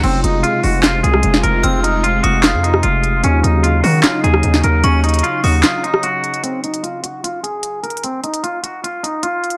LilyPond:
<<
  \new Staff \with { instrumentName = "Synth bell" } { \time 4/4 \key ees \dorian \tempo 4 = 150 r1 | f'''4. ees'''2~ ees'''8 | r1 | des'''4. ees'''4. r4 |
r1 | r1 | }
  \new Staff \with { instrumentName = "Clean electric guitar" } { \time 4/4 \key ees \dorian c'8 ees'8 f'8 ges'8 f'8 aes'4 bes'8 | c'8 ees'8 f'8 ges'8 f'8 ees'8 f'4 | des'8 ees'8 f'8 ges'8 f'8 aes'4 bes'8 | des'8 ees'8 f'8 ges'8 f'8 ees'8 ges'4 |
c'8 ees'8 f'8 ges'8 f'8 aes'4 bes'8 | c'8 ees'8 f'8 ges'8 f'8 ees'8 f'4 | }
  \new Staff \with { instrumentName = "Analog synth pad" } { \clef bass \time 4/4 \key ees \dorian <c aes f'>1~ | <c aes f'>1 | <des ges ees'>1~ | <des ges ees'>1 |
r1 | r1 | }
  \new Staff \with { instrumentName = "808-style bass" } { \clef bass \time 4/4 \key ees \dorian f,,8 f,,8 r8 f,,4 c,8 f,,8 f,,8 | f,,4. f,,8. f,8. f,,4 | ees,8 ees,4 ees8 r8 ees,8 ees,8 ees,8 | ees,4 r8 ees,8 r2 |
r1 | r1 | }
  \new DrumStaff \with { instrumentName = "Drums" } \drummode { \time 4/4 cymc8 hh8 hh8 hho8 <hc hh sn>8 hh16 ss16 hh16 sn16 hh8 | hh8 hh8 hh8 hh8 <hc hh sn>8 hh16 ss16 hh8 hh8 | hh8 hh8 hh8 hho8 <hc hh sn>8 hh16 ss16 hh16 sn16 hh8 | hh8 hh32 hh32 hh32 hh32 hh8 hho8 <hc hh sn>8 hh16 ss16 hh8 hh16 hh16 |
hh8 hh16 hh16 hh8 hh8 hh8 hh8 \tuplet 3/2 { hh16 r16 r16 hh16 hh16 hh16 } | hh8 hh16 hh16 hh8 hh8 hh8 hh8 \tuplet 3/2 { hh16 r16 r16 hh16 hh16 r16 } | }
>>